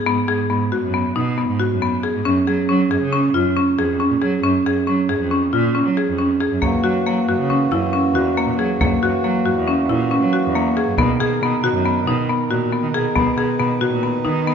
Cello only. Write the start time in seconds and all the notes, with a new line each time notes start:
0.06 G#2
0.28 G#2
0.50 G#2
0.72 G#2
0.83 F#2
1.16 B2
1.49 G#2
1.71 F#2
2.14 G#2
2.26 F#2
2.47 F#3
2.69 F#3
2.91 F#2
3.02 C#3
3.34 F#2
3.79 F2
4.11 A#2
4.22 F#3
4.44 F#2
4.65 F#2
4.87 F#3
5.10 F#2
5.20 F2
5.53 A#2
5.85 F#3
6.07 F2
6.51 F#2
6.62 F#2
6.84 F#3
7.06 F#3
7.28 F#2
7.39 C#3
7.72 F#2
8.14 E2
8.47 A#2
8.58 F#3
8.80 F#2
9.02 F#2
9.23 F#3
9.45 F#2
9.56 E2
9.89 A#2
10.22 F#3
10.44 E2
10.87 F#2
10.98 B2
11.20 B2
11.41 B2
11.63 B2
11.74 F#2
12.06 B2
12.50 A#2
12.83 D#3
12.94 B2
13.16 B2
13.37 B2
13.59 B2
13.81 B2
13.92 A#2
14.25 D#3